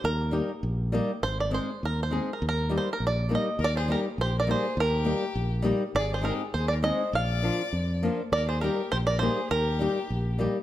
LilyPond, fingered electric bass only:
\new Staff \with { instrumentName = "Fingered electric bass" } { \clef bass \time 2/4 \key ees \major \tempo 4 = 101 ees,4 bes,,4 | aes,,4 ees,4 | ees,4 bes,,4 | ees,4 bes,,4 |
ees,4 bes,,4 | aes,,4 ees,4 | bes,,4 f,4 | ees,4 bes,,4 |
ees,4 bes,,4 | }